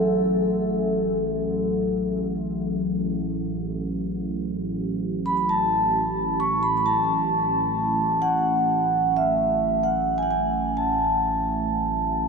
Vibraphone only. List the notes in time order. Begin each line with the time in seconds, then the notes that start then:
Already playing: A4
5.26 B5
5.37 B5
5.49 A5
6.40 C#6
6.63 B5
6.77 B5
6.86 A5
8.22 F#5
9.17 E5
9.83 F#5
10.18 G#5
10.23 F#5
10.31 G#5
10.77 A5